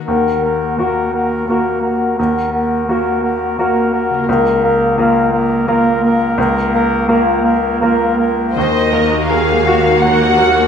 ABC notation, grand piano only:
X:1
M:3/4
L:1/8
Q:1/4=85
K:Ebm
V:1 name="Grand piano"
E,,2 [B,GB]2 [B,GB]2 | E,,2 [B,GB]2 [B,GB]2 | D,,2 [B,FB]2 [B,FB]2 | D,,2 [B,FB]2 [B,FB]2 |
E,, B, B G g B |]